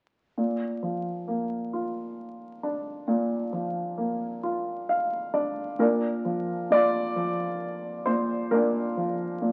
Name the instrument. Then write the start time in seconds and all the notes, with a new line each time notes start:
grand piano
0.38 A#2
0.83 F3
1.28 A#3
1.73 F4
2.63 D4
3.08 A#2
3.53 F3
3.98 A#3
4.43 F4
4.89 F5
5.34 D4 D5
5.79 A#2 D4 A#4
6.25 F3
6.70 A#2 F4 D5
7.16 F3
8.06 A#2 C5
8.51 A#2 D4 A#4
8.97 F3
9.42 A#2